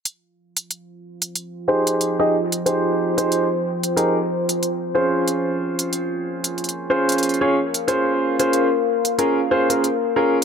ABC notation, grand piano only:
X:1
M:4/4
L:1/16
Q:"Swing 16ths" 1/4=92
K:Fm
V:1 name="Grand piano"
z8 z2 [EGAc]3 [EGAe] z2 | [EGAc]3 [EGAc]2 z3 [EGAB] z4 z [DFAc]2- | [DFAc]8- [DFAc]2 [DFAc]3 [DFAd] z2 | [DFAc]3 [DFAc]2 z3 [DFAB] z [DFAc] [DFAB] z2 [DFAB] z |]